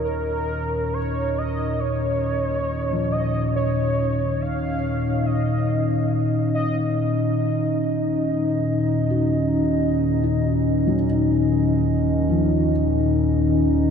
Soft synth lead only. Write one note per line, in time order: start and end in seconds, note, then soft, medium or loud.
0.05 0.95 A#4 medium
0.94 1.39 C#5 medium
1.38 1.81 D#5 medium
1.80 3.13 C#5 medium
3.12 3.54 D#5 medium
3.56 4.42 C#5 medium
4.41 5.27 F5 medium
5.26 6.13 D#5 medium
6.54 6.96 D#5 medium